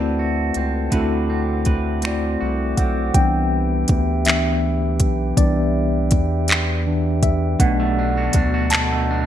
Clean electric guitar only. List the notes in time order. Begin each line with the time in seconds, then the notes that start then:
Already playing: D3 C4 E4 B4
0.19 F#4
0.57 C4
0.91 D3 B4
1.30 C4
1.66 B4
2.03 C4
2.41 F#4
2.79 C4
7.60 B2
7.80 A3
7.99 D4
8.17 F#4
8.36 D4
8.54 F#4
8.73 B2
8.92 A3
9.11 D4